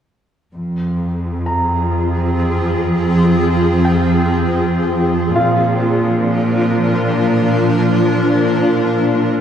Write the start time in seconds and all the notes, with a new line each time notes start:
0.55 F2 F3 C4 F4 G#4
1.46 A#5
3.85 G5
5.34 A#2 F3 D4 F4 A#4 F5